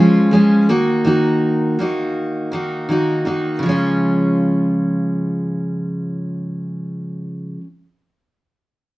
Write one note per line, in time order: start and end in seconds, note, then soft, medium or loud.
0.00 0.30 F3 medium
0.00 0.31 G#3 medium
0.00 0.33 C#4 medium
0.00 0.33 F4 medium
0.31 0.68 F3 medium
0.31 0.69 G#3 medium
0.31 0.69 C#4 medium
0.31 0.70 F4 medium
0.69 1.03 D#3 medium
0.69 1.04 A#3 medium
0.69 1.06 D#4 medium
0.69 1.06 F#4 medium
1.05 1.78 D#3 medium
1.05 1.79 A#3 medium
1.05 1.79 D#4 medium
1.05 1.80 F#4 medium
1.79 2.50 D#3 soft
1.79 2.52 A#3 medium
1.79 2.53 D#4 medium
1.79 2.54 F#4 medium
2.52 2.88 D#3 medium
2.52 2.89 A#3 medium
2.52 2.90 D#4 medium
2.52 2.90 F#4 medium
2.89 3.24 D#3 soft
2.89 3.25 A#3 medium
2.89 3.26 D#4 medium
2.89 3.27 F#4 medium
3.25 3.62 D#3 soft
3.25 3.62 A#3 medium
3.25 3.63 D#4 medium
3.25 3.63 F#4 medium
3.59 7.57 C#3 medium
3.59 7.61 F3 medium
3.66 7.64 G#3 medium
3.66 7.67 C#4 medium
3.71 7.69 F4 medium